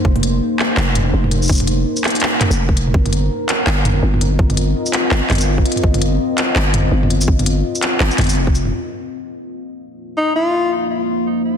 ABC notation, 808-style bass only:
X:1
M:4/4
L:1/16
Q:"Swing 16ths" 1/4=166
K:Fm
V:1 name="808-style bass" clef=bass
F,,,4 z4 F,,,4 F,,,4 | F,,,4 z6 z F,,,4- F,,, | G,,,4 z4 G,,,4 G,,,4 | G,,,4 z4 G,,, z G,,,4 z2 |
G,,,4 z4 G,,,4 G,,,4 | G,,,4 z4 G,,, z G,,,2 F,,,4 | z16 | z16 |]